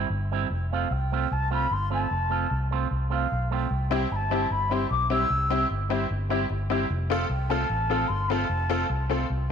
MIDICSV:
0, 0, Header, 1, 6, 480
1, 0, Start_track
1, 0, Tempo, 399734
1, 603, Time_signature, 4, 2, 24, 8
1, 11429, End_track
2, 0, Start_track
2, 0, Title_t, "Flute"
2, 0, Program_c, 0, 73
2, 866, Note_on_c, 0, 77, 81
2, 1110, Note_on_c, 0, 79, 94
2, 1128, Note_off_c, 0, 77, 0
2, 1590, Note_on_c, 0, 81, 98
2, 1608, Note_off_c, 0, 79, 0
2, 1829, Note_off_c, 0, 81, 0
2, 1837, Note_on_c, 0, 83, 105
2, 2074, Note_on_c, 0, 84, 105
2, 2092, Note_off_c, 0, 83, 0
2, 2312, Note_off_c, 0, 84, 0
2, 2321, Note_on_c, 0, 81, 99
2, 3222, Note_off_c, 0, 81, 0
2, 3762, Note_on_c, 0, 77, 89
2, 4197, Note_off_c, 0, 77, 0
2, 4244, Note_on_c, 0, 79, 89
2, 4678, Note_off_c, 0, 79, 0
2, 4719, Note_on_c, 0, 79, 86
2, 4949, Note_on_c, 0, 83, 89
2, 4967, Note_off_c, 0, 79, 0
2, 4994, Note_on_c, 0, 81, 97
2, 5006, Note_off_c, 0, 83, 0
2, 5425, Note_on_c, 0, 83, 101
2, 5443, Note_off_c, 0, 81, 0
2, 5668, Note_on_c, 0, 84, 96
2, 5686, Note_off_c, 0, 83, 0
2, 5887, Note_off_c, 0, 84, 0
2, 5894, Note_on_c, 0, 86, 105
2, 6124, Note_off_c, 0, 86, 0
2, 6144, Note_on_c, 0, 88, 109
2, 6801, Note_off_c, 0, 88, 0
2, 8533, Note_on_c, 0, 77, 78
2, 8747, Note_off_c, 0, 77, 0
2, 8756, Note_on_c, 0, 79, 97
2, 9000, Note_on_c, 0, 81, 104
2, 9018, Note_off_c, 0, 79, 0
2, 9703, Note_on_c, 0, 84, 106
2, 9721, Note_off_c, 0, 81, 0
2, 9947, Note_on_c, 0, 83, 90
2, 9965, Note_off_c, 0, 84, 0
2, 9989, Note_on_c, 0, 81, 98
2, 10001, Note_off_c, 0, 83, 0
2, 10921, Note_off_c, 0, 81, 0
2, 11429, End_track
3, 0, Start_track
3, 0, Title_t, "Honky-tonk piano"
3, 0, Program_c, 1, 3
3, 4692, Note_on_c, 1, 60, 99
3, 4699, Note_on_c, 1, 64, 89
3, 4708, Note_on_c, 1, 67, 106
3, 4867, Note_off_c, 1, 60, 0
3, 4871, Note_off_c, 1, 64, 0
3, 4875, Note_off_c, 1, 67, 0
3, 5177, Note_on_c, 1, 60, 90
3, 5184, Note_on_c, 1, 64, 89
3, 5191, Note_on_c, 1, 67, 99
3, 5349, Note_off_c, 1, 60, 0
3, 5353, Note_off_c, 1, 64, 0
3, 5356, Note_off_c, 1, 67, 0
3, 5656, Note_on_c, 1, 60, 82
3, 5662, Note_on_c, 1, 64, 82
3, 5669, Note_on_c, 1, 67, 98
3, 5829, Note_off_c, 1, 60, 0
3, 5832, Note_off_c, 1, 64, 0
3, 5835, Note_off_c, 1, 67, 0
3, 5893, Note_on_c, 1, 67, 25
3, 5895, Note_on_c, 1, 64, 21
3, 5940, Note_off_c, 1, 67, 0
3, 5941, Note_off_c, 1, 64, 0
3, 6125, Note_on_c, 1, 60, 94
3, 6135, Note_on_c, 1, 64, 83
3, 6142, Note_on_c, 1, 67, 102
3, 6303, Note_off_c, 1, 60, 0
3, 6308, Note_off_c, 1, 64, 0
3, 6311, Note_off_c, 1, 67, 0
3, 6609, Note_on_c, 1, 60, 97
3, 6617, Note_on_c, 1, 64, 87
3, 6623, Note_on_c, 1, 67, 108
3, 6785, Note_off_c, 1, 60, 0
3, 6789, Note_off_c, 1, 64, 0
3, 6791, Note_off_c, 1, 67, 0
3, 7087, Note_on_c, 1, 60, 93
3, 7094, Note_on_c, 1, 64, 88
3, 7099, Note_on_c, 1, 67, 98
3, 7263, Note_off_c, 1, 60, 0
3, 7267, Note_off_c, 1, 64, 0
3, 7270, Note_off_c, 1, 67, 0
3, 7568, Note_on_c, 1, 60, 84
3, 7576, Note_on_c, 1, 64, 80
3, 7581, Note_on_c, 1, 67, 99
3, 7744, Note_off_c, 1, 60, 0
3, 7748, Note_off_c, 1, 64, 0
3, 7750, Note_off_c, 1, 67, 0
3, 7809, Note_on_c, 1, 64, 22
3, 7810, Note_on_c, 1, 67, 24
3, 7857, Note_off_c, 1, 64, 0
3, 7857, Note_off_c, 1, 67, 0
3, 8044, Note_on_c, 1, 60, 92
3, 8055, Note_on_c, 1, 64, 82
3, 8063, Note_on_c, 1, 67, 99
3, 8222, Note_off_c, 1, 60, 0
3, 8227, Note_off_c, 1, 64, 0
3, 8231, Note_off_c, 1, 67, 0
3, 8525, Note_on_c, 1, 60, 97
3, 8534, Note_on_c, 1, 65, 88
3, 8544, Note_on_c, 1, 69, 112
3, 8702, Note_off_c, 1, 60, 0
3, 8706, Note_off_c, 1, 65, 0
3, 8711, Note_off_c, 1, 69, 0
3, 9007, Note_on_c, 1, 60, 91
3, 9011, Note_on_c, 1, 65, 84
3, 9021, Note_on_c, 1, 69, 109
3, 9183, Note_off_c, 1, 60, 0
3, 9185, Note_off_c, 1, 65, 0
3, 9190, Note_off_c, 1, 69, 0
3, 9484, Note_on_c, 1, 60, 85
3, 9493, Note_on_c, 1, 65, 84
3, 9500, Note_on_c, 1, 69, 95
3, 9661, Note_off_c, 1, 60, 0
3, 9666, Note_off_c, 1, 65, 0
3, 9669, Note_off_c, 1, 69, 0
3, 9724, Note_on_c, 1, 69, 26
3, 9726, Note_on_c, 1, 65, 24
3, 9774, Note_off_c, 1, 69, 0
3, 9775, Note_off_c, 1, 65, 0
3, 9966, Note_on_c, 1, 60, 94
3, 9974, Note_on_c, 1, 65, 89
3, 9983, Note_on_c, 1, 69, 104
3, 10142, Note_off_c, 1, 60, 0
3, 10146, Note_off_c, 1, 65, 0
3, 10150, Note_off_c, 1, 69, 0
3, 10442, Note_on_c, 1, 60, 97
3, 10446, Note_on_c, 1, 65, 94
3, 10454, Note_on_c, 1, 69, 114
3, 10620, Note_off_c, 1, 60, 0
3, 10622, Note_off_c, 1, 65, 0
3, 10626, Note_off_c, 1, 69, 0
3, 10922, Note_on_c, 1, 60, 87
3, 10928, Note_on_c, 1, 65, 79
3, 10934, Note_on_c, 1, 69, 99
3, 11100, Note_off_c, 1, 60, 0
3, 11104, Note_off_c, 1, 65, 0
3, 11107, Note_off_c, 1, 69, 0
3, 11429, End_track
4, 0, Start_track
4, 0, Title_t, "Clean electric guitar"
4, 0, Program_c, 2, 27
4, 380, Note_on_c, 2, 55, 82
4, 385, Note_on_c, 2, 60, 96
4, 394, Note_on_c, 2, 64, 90
4, 559, Note_off_c, 2, 55, 0
4, 562, Note_off_c, 2, 60, 0
4, 566, Note_off_c, 2, 64, 0
4, 871, Note_on_c, 2, 57, 80
4, 873, Note_on_c, 2, 60, 82
4, 878, Note_on_c, 2, 65, 85
4, 1045, Note_off_c, 2, 57, 0
4, 1046, Note_off_c, 2, 60, 0
4, 1049, Note_off_c, 2, 65, 0
4, 1347, Note_on_c, 2, 57, 81
4, 1354, Note_on_c, 2, 65, 92
4, 1355, Note_on_c, 2, 60, 89
4, 1524, Note_off_c, 2, 57, 0
4, 1527, Note_off_c, 2, 65, 0
4, 1528, Note_off_c, 2, 60, 0
4, 1808, Note_on_c, 2, 57, 82
4, 1816, Note_on_c, 2, 60, 87
4, 1817, Note_on_c, 2, 65, 105
4, 1995, Note_off_c, 2, 57, 0
4, 1999, Note_off_c, 2, 60, 0
4, 1999, Note_off_c, 2, 65, 0
4, 2286, Note_on_c, 2, 57, 82
4, 2291, Note_on_c, 2, 60, 87
4, 2298, Note_on_c, 2, 65, 91
4, 2474, Note_off_c, 2, 57, 0
4, 2477, Note_off_c, 2, 60, 0
4, 2480, Note_off_c, 2, 65, 0
4, 2759, Note_on_c, 2, 57, 75
4, 2770, Note_on_c, 2, 60, 86
4, 2775, Note_on_c, 2, 65, 86
4, 2951, Note_off_c, 2, 57, 0
4, 2957, Note_off_c, 2, 60, 0
4, 2959, Note_off_c, 2, 65, 0
4, 3255, Note_on_c, 2, 57, 77
4, 3270, Note_on_c, 2, 60, 92
4, 3271, Note_on_c, 2, 65, 93
4, 3439, Note_off_c, 2, 57, 0
4, 3447, Note_off_c, 2, 60, 0
4, 3447, Note_off_c, 2, 65, 0
4, 3725, Note_on_c, 2, 57, 85
4, 3734, Note_on_c, 2, 60, 84
4, 3742, Note_on_c, 2, 65, 84
4, 3914, Note_off_c, 2, 57, 0
4, 3918, Note_off_c, 2, 60, 0
4, 3923, Note_off_c, 2, 65, 0
4, 4216, Note_on_c, 2, 57, 91
4, 4223, Note_on_c, 2, 60, 91
4, 4232, Note_on_c, 2, 65, 89
4, 4399, Note_off_c, 2, 57, 0
4, 4403, Note_off_c, 2, 60, 0
4, 4407, Note_off_c, 2, 65, 0
4, 4686, Note_on_c, 2, 55, 82
4, 4698, Note_on_c, 2, 60, 91
4, 4699, Note_on_c, 2, 64, 89
4, 4874, Note_off_c, 2, 55, 0
4, 4880, Note_off_c, 2, 60, 0
4, 4881, Note_off_c, 2, 64, 0
4, 5163, Note_on_c, 2, 55, 69
4, 5170, Note_on_c, 2, 60, 79
4, 5178, Note_on_c, 2, 64, 83
4, 5352, Note_off_c, 2, 55, 0
4, 5356, Note_off_c, 2, 60, 0
4, 5360, Note_off_c, 2, 64, 0
4, 5638, Note_on_c, 2, 55, 74
4, 5647, Note_on_c, 2, 60, 82
4, 5649, Note_on_c, 2, 64, 86
4, 5830, Note_off_c, 2, 55, 0
4, 5834, Note_off_c, 2, 60, 0
4, 5835, Note_off_c, 2, 64, 0
4, 6126, Note_on_c, 2, 55, 81
4, 6129, Note_on_c, 2, 60, 94
4, 6137, Note_on_c, 2, 64, 95
4, 6313, Note_off_c, 2, 55, 0
4, 6315, Note_off_c, 2, 60, 0
4, 6319, Note_off_c, 2, 64, 0
4, 6603, Note_on_c, 2, 55, 74
4, 6611, Note_on_c, 2, 60, 80
4, 6612, Note_on_c, 2, 64, 86
4, 6792, Note_off_c, 2, 55, 0
4, 6796, Note_off_c, 2, 60, 0
4, 6796, Note_off_c, 2, 64, 0
4, 7075, Note_on_c, 2, 55, 81
4, 7081, Note_on_c, 2, 60, 90
4, 7091, Note_on_c, 2, 64, 87
4, 7267, Note_off_c, 2, 55, 0
4, 7270, Note_off_c, 2, 60, 0
4, 7275, Note_off_c, 2, 64, 0
4, 7558, Note_on_c, 2, 55, 79
4, 7565, Note_on_c, 2, 60, 83
4, 7569, Note_on_c, 2, 64, 94
4, 7748, Note_off_c, 2, 55, 0
4, 7752, Note_off_c, 2, 60, 0
4, 7754, Note_off_c, 2, 64, 0
4, 8048, Note_on_c, 2, 55, 86
4, 8050, Note_on_c, 2, 60, 83
4, 8055, Note_on_c, 2, 64, 91
4, 8233, Note_off_c, 2, 55, 0
4, 8234, Note_off_c, 2, 60, 0
4, 8237, Note_off_c, 2, 64, 0
4, 8529, Note_on_c, 2, 57, 87
4, 8533, Note_on_c, 2, 60, 93
4, 8542, Note_on_c, 2, 65, 90
4, 8714, Note_off_c, 2, 57, 0
4, 8716, Note_off_c, 2, 60, 0
4, 8720, Note_off_c, 2, 65, 0
4, 9000, Note_on_c, 2, 57, 91
4, 9010, Note_on_c, 2, 60, 90
4, 9013, Note_on_c, 2, 65, 105
4, 9189, Note_off_c, 2, 57, 0
4, 9194, Note_off_c, 2, 60, 0
4, 9196, Note_off_c, 2, 65, 0
4, 9490, Note_on_c, 2, 57, 86
4, 9499, Note_on_c, 2, 60, 86
4, 9501, Note_on_c, 2, 65, 98
4, 9674, Note_off_c, 2, 57, 0
4, 9678, Note_off_c, 2, 60, 0
4, 9680, Note_off_c, 2, 65, 0
4, 9973, Note_on_c, 2, 57, 81
4, 9980, Note_on_c, 2, 60, 78
4, 9983, Note_on_c, 2, 65, 89
4, 10156, Note_off_c, 2, 57, 0
4, 10159, Note_off_c, 2, 60, 0
4, 10161, Note_off_c, 2, 65, 0
4, 10450, Note_on_c, 2, 57, 82
4, 10458, Note_on_c, 2, 60, 81
4, 10463, Note_on_c, 2, 65, 97
4, 10634, Note_off_c, 2, 57, 0
4, 10638, Note_off_c, 2, 60, 0
4, 10641, Note_off_c, 2, 65, 0
4, 10928, Note_on_c, 2, 57, 73
4, 10933, Note_on_c, 2, 60, 80
4, 10943, Note_on_c, 2, 65, 88
4, 11114, Note_off_c, 2, 57, 0
4, 11116, Note_off_c, 2, 60, 0
4, 11121, Note_off_c, 2, 65, 0
4, 11429, End_track
5, 0, Start_track
5, 0, Title_t, "Fingered electric bass"
5, 0, Program_c, 3, 33
5, 120, Note_on_c, 3, 31, 90
5, 530, Note_off_c, 3, 31, 0
5, 603, Note_on_c, 3, 29, 99
5, 1012, Note_off_c, 3, 29, 0
5, 1090, Note_on_c, 3, 36, 97
5, 1497, Note_off_c, 3, 36, 0
5, 1577, Note_on_c, 3, 36, 93
5, 1981, Note_off_c, 3, 36, 0
5, 2052, Note_on_c, 3, 31, 95
5, 2459, Note_off_c, 3, 31, 0
5, 2531, Note_on_c, 3, 29, 102
5, 2938, Note_off_c, 3, 29, 0
5, 3014, Note_on_c, 3, 36, 88
5, 3420, Note_off_c, 3, 36, 0
5, 3494, Note_on_c, 3, 36, 87
5, 3900, Note_off_c, 3, 36, 0
5, 3984, Note_on_c, 3, 35, 90
5, 4385, Note_off_c, 3, 35, 0
5, 4451, Note_on_c, 3, 36, 104
5, 4857, Note_off_c, 3, 36, 0
5, 4940, Note_on_c, 3, 31, 91
5, 5342, Note_off_c, 3, 31, 0
5, 5410, Note_on_c, 3, 31, 91
5, 5817, Note_off_c, 3, 31, 0
5, 5892, Note_on_c, 3, 35, 93
5, 6297, Note_off_c, 3, 35, 0
5, 6366, Note_on_c, 3, 36, 103
5, 6774, Note_off_c, 3, 36, 0
5, 6853, Note_on_c, 3, 31, 97
5, 7257, Note_off_c, 3, 31, 0
5, 7331, Note_on_c, 3, 31, 100
5, 7736, Note_off_c, 3, 31, 0
5, 7807, Note_on_c, 3, 31, 94
5, 8214, Note_off_c, 3, 31, 0
5, 8289, Note_on_c, 3, 29, 108
5, 8695, Note_off_c, 3, 29, 0
5, 8760, Note_on_c, 3, 36, 89
5, 9170, Note_off_c, 3, 36, 0
5, 9244, Note_on_c, 3, 33, 91
5, 9652, Note_off_c, 3, 33, 0
5, 9721, Note_on_c, 3, 31, 92
5, 10130, Note_off_c, 3, 31, 0
5, 10199, Note_on_c, 3, 29, 104
5, 10609, Note_off_c, 3, 29, 0
5, 10685, Note_on_c, 3, 36, 97
5, 11092, Note_off_c, 3, 36, 0
5, 11167, Note_on_c, 3, 36, 95
5, 11429, Note_off_c, 3, 36, 0
5, 11429, End_track
6, 0, Start_track
6, 0, Title_t, "Muted clean electric guitar strokes"
6, 1104, Note_on_c, 9, 29, 48
6, 1224, Note_off_c, 9, 29, 0
6, 4915, Note_on_c, 9, 29, 44
6, 5035, Note_off_c, 9, 29, 0
6, 6828, Note_on_c, 9, 29, 50
6, 6948, Note_off_c, 9, 29, 0
6, 8769, Note_on_c, 9, 29, 46
6, 8889, Note_off_c, 9, 29, 0
6, 10676, Note_on_c, 9, 29, 42
6, 10796, Note_off_c, 9, 29, 0
6, 11429, End_track
0, 0, End_of_file